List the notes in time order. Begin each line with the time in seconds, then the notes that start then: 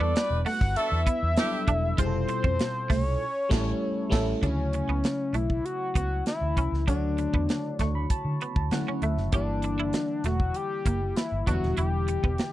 Already playing: G3 B3 D4 E4 B4 D5
0.00 E2 B3 D4 F#4 A4
0.15 E4 G4 B4, snare, closed hi-hat
0.30 E1
0.45 A3 F#5, snare, open hi-hat
0.61 G1, kick
0.76 D4 F#4 A4 E5, muted fingered electric bass stroke, closed hi-hat
0.92 E2
1.07 B3, kick, closed hi-hat
1.23 E2
1.37 F#3 B3 D4 E4 G4 A4, snare, closed hi-hat
1.43 G3
1.68 E1 D4, kick, closed hi-hat
1.97 F1 B2 G3 E4 F4 G#4 C5, kick, closed hi-hat
2.06 A4
2.29 muted clean electric guitar stroke, closed hi-hat
2.44 F2 C4, kick
2.59 snare, closed hi-hat
2.90 C2 A3 C#5, kick, snare, open hi-hat
3.49 A1 G3 A3 C#4 E4 A4, kick, snare, crash
4.10 A1 G3 A3 C#4 E4 A4, kick, crash
4.14 snare
4.41 D2 C#3 F#3 A3 C#4 D4 E4, kick, closed hi-hat
4.73 muted clean electric guitar stroke, closed hi-hat
4.88 C#2 B3
5.04 snare, closed hi-hat
5.33 B1 A3 E4, closed hi-hat
5.50 kick
5.65 F#4, closed hi-hat
5.95 C#2 B3 F#4, kick, closed hi-hat
6.26 E4, snare, closed hi-hat
6.41 D2
6.57 C2 C#4, kick, closed hi-hat
6.72 C#2, snare
6.86 D2 D3 F#3 A3 D4 F#4 C#5, kick, closed hi-hat
7.18 muted clean electric guitar stroke, closed hi-hat
7.33 E2 B3, kick
7.49 snare, closed hi-hat
7.79 D2 A3 C#6, kick, snare, closed hi-hat
7.95 B5
8.10 A5, kick, closed hi-hat
8.25 D3
8.41 B3, closed hi-hat
8.56 D2 A5, kick
8.71 D3 F#3 A3 C#4 E4 F#5, muted clean electric guitar stroke, snare, closed hi-hat
8.88 C#4
9.02 D2 A3 E5, closed hi-hat
9.17 F#1, snare
9.32 G1 D3 E3 G3 A#3 D4 E4 G4, kick, closed hi-hat
9.62 muted clean electric guitar stroke, closed hi-hat
9.78 F#1 E4
9.93 snare, closed hi-hat
10.24 E1 A3 F#4, snare, closed hi-hat
10.40 kick
10.54 G4, closed hi-hat
10.85 F#1 A#3, kick, closed hi-hat
11.16 E4, snare, closed hi-hat
11.32 G1
11.46 E1 D3 E3 F#3 B3 D4 E4 F#4, kick, closed hi-hat
11.54 G3
11.62 D#1, snare
11.77 E1 E4 G4, closed hi-hat
12.08 muted clean electric guitar stroke, closed hi-hat
12.24 E1 B3, kick
12.38 snare, closed hi-hat